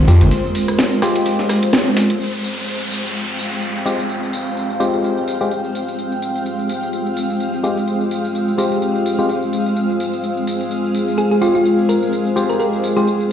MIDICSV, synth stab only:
0, 0, Header, 1, 2, 480
1, 0, Start_track
1, 0, Key_signature, -4, "minor"
1, 0, Tempo, 472441
1, 318, Time_signature, 4, 2, 24, 8
1, 13537, End_track
2, 0, Start_track
2, 0, Title_t, "Synth stab"
2, 0, Program_c, 0, 62
2, 78, Note_on_c, 0, 56, 87
2, 78, Note_on_c, 0, 60, 75
2, 78, Note_on_c, 0, 65, 73
2, 78, Note_on_c, 0, 67, 92
2, 226, Note_off_c, 0, 56, 0
2, 226, Note_off_c, 0, 60, 0
2, 226, Note_off_c, 0, 65, 0
2, 226, Note_off_c, 0, 67, 0
2, 1038, Note_on_c, 0, 60, 94
2, 1038, Note_on_c, 0, 65, 96
2, 1038, Note_on_c, 0, 67, 114
2, 1039, Note_on_c, 0, 56, 98
2, 1621, Note_off_c, 0, 56, 0
2, 1621, Note_off_c, 0, 60, 0
2, 1621, Note_off_c, 0, 65, 0
2, 1621, Note_off_c, 0, 67, 0
2, 3917, Note_on_c, 0, 56, 80
2, 3917, Note_on_c, 0, 60, 70
2, 3917, Note_on_c, 0, 65, 72
2, 3918, Note_on_c, 0, 67, 86
2, 4065, Note_off_c, 0, 56, 0
2, 4065, Note_off_c, 0, 60, 0
2, 4065, Note_off_c, 0, 65, 0
2, 4066, Note_off_c, 0, 67, 0
2, 4877, Note_on_c, 0, 67, 104
2, 4878, Note_on_c, 0, 56, 94
2, 4878, Note_on_c, 0, 60, 87
2, 4878, Note_on_c, 0, 65, 88
2, 5461, Note_off_c, 0, 56, 0
2, 5461, Note_off_c, 0, 60, 0
2, 5461, Note_off_c, 0, 65, 0
2, 5461, Note_off_c, 0, 67, 0
2, 5493, Note_on_c, 0, 56, 97
2, 5494, Note_on_c, 0, 60, 89
2, 5494, Note_on_c, 0, 65, 90
2, 5494, Note_on_c, 0, 67, 101
2, 5613, Note_off_c, 0, 56, 0
2, 5614, Note_off_c, 0, 60, 0
2, 5614, Note_off_c, 0, 65, 0
2, 5614, Note_off_c, 0, 67, 0
2, 7757, Note_on_c, 0, 56, 77
2, 7757, Note_on_c, 0, 60, 71
2, 7757, Note_on_c, 0, 67, 87
2, 7758, Note_on_c, 0, 65, 72
2, 7905, Note_off_c, 0, 56, 0
2, 7905, Note_off_c, 0, 60, 0
2, 7905, Note_off_c, 0, 67, 0
2, 7906, Note_off_c, 0, 65, 0
2, 8717, Note_on_c, 0, 56, 95
2, 8717, Note_on_c, 0, 60, 87
2, 8717, Note_on_c, 0, 65, 87
2, 8717, Note_on_c, 0, 67, 109
2, 9301, Note_off_c, 0, 56, 0
2, 9301, Note_off_c, 0, 60, 0
2, 9301, Note_off_c, 0, 65, 0
2, 9301, Note_off_c, 0, 67, 0
2, 9333, Note_on_c, 0, 56, 95
2, 9333, Note_on_c, 0, 60, 92
2, 9333, Note_on_c, 0, 65, 87
2, 9333, Note_on_c, 0, 67, 103
2, 9453, Note_off_c, 0, 56, 0
2, 9453, Note_off_c, 0, 60, 0
2, 9453, Note_off_c, 0, 65, 0
2, 9453, Note_off_c, 0, 67, 0
2, 11598, Note_on_c, 0, 56, 75
2, 11598, Note_on_c, 0, 60, 73
2, 11598, Note_on_c, 0, 65, 75
2, 11599, Note_on_c, 0, 67, 87
2, 11746, Note_off_c, 0, 56, 0
2, 11746, Note_off_c, 0, 60, 0
2, 11746, Note_off_c, 0, 65, 0
2, 11746, Note_off_c, 0, 67, 0
2, 12558, Note_on_c, 0, 56, 97
2, 12558, Note_on_c, 0, 60, 87
2, 12558, Note_on_c, 0, 65, 86
2, 12558, Note_on_c, 0, 67, 106
2, 13141, Note_off_c, 0, 56, 0
2, 13141, Note_off_c, 0, 60, 0
2, 13141, Note_off_c, 0, 65, 0
2, 13141, Note_off_c, 0, 67, 0
2, 13174, Note_on_c, 0, 56, 96
2, 13174, Note_on_c, 0, 60, 92
2, 13174, Note_on_c, 0, 65, 91
2, 13174, Note_on_c, 0, 67, 102
2, 13294, Note_off_c, 0, 56, 0
2, 13294, Note_off_c, 0, 60, 0
2, 13294, Note_off_c, 0, 65, 0
2, 13294, Note_off_c, 0, 67, 0
2, 13537, End_track
0, 0, End_of_file